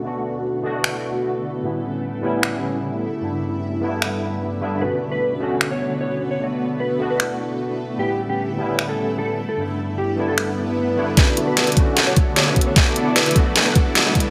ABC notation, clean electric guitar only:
X:1
M:4/4
L:1/16
Q:1/4=151
K:Bm
V:1 name="Clean electric guitar"
z16 | z16 | z16 | B2 z B2 z4 c2 z c2 z c |
z4 B2 z B2 z6 z | G2 z G2 z4 A2 z A2 z A | z4 G2 z A2 z6 z | B2 z B2 z4 c2 z c2 z c |
z4 B2 z B2 z6 z |]